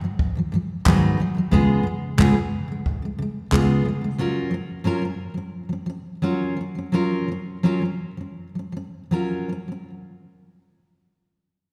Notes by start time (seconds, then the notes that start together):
0.01 G#2 D#3 F#3
0.19 kick
0.35 G#2 D#3 F#3
0.52 G#2 D#3 F#3
0.85 G#2 D#3 F#3 B3 D#4 G#4, kick, clap
1.18 G#2 D#3 F#3
1.35 G#2 D#3 F#3
1.51 C#3 G#3 B3 F4 G#4, kick
1.83 C#3 G#3
2.18 C#3 G#3 B3 F4 G#4, kick, clap
2.34 C#3 G#3
2.68 C#3 G#3
2.86 kick
3.02 C#3 G#3
3.19 C#3 G#3
3.51 C#3 G#3 B3 F4 G#4, kick, clap
3.85 C#3 G#3
4.01 C#3 G#3
4.18 F#3 C#4 F4 A#4
4.51 F#3 C#4
4.84 F#3 C#4 F4 A#4
5.02 F#3 C#4
5.34 F#3 C#4
5.69 F#3 C#4
5.86 F#3 C#4
6.22 F#3 C#4 F4 A#4
6.57 F#3
6.75 F#3 C#4
6.92 F#3 C#4 F4 A#4
7.28 F#3 C#4
7.63 F#3 C#4 F4 A#4
7.82 F#3 C#4
8.17 F#3 C#4
8.55 F#3 C#4
8.72 F#3
8.77 C#4
9.11 F#3 C#4 F4 A#4
9.49 F#3 C#4
9.68 F#3 C#4